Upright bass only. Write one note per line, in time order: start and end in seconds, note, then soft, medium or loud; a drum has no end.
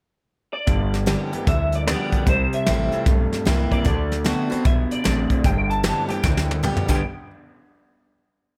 0.68 1.14 G1 medium
1.33 muted upright bass stroke medium
1.47 1.93 D2 medium
2.27 2.45 C2 loud
2.54 muted upright bass stroke medium
2.68 2.89 A1 medium
2.94 muted upright bass stroke medium
3.07 3.28 B1 medium
3.47 3.68 C2 medium
3.86 4.32 D2 medium
4.51 muted upright bass stroke medium
4.66 4.87 B1 medium
4.91 muted upright bass stroke medium
5.06 5.27 A1 medium
5.45 5.90 G1 medium
6.10 muted upright bass stroke medium
6.24 6.69 D2 medium
6.89 7.02 G1 medium